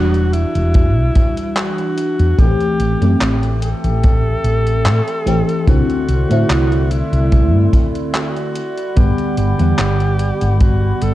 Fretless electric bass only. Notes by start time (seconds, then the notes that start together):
Already playing: E1
0.55 E1
0.96 B1
2.20 E2
2.38 A1
2.80 A1
3.01 F#2
3.21 A1
3.84 A1
4.44 A1
4.85 A2
5.26 A1
5.67 C2
6.09 C2
6.30 A2
6.50 C2
7.12 C2
7.54 G2
8.97 G1
9.38 G1
9.60 E2
9.79 G1
10.42 G1
11.02 G1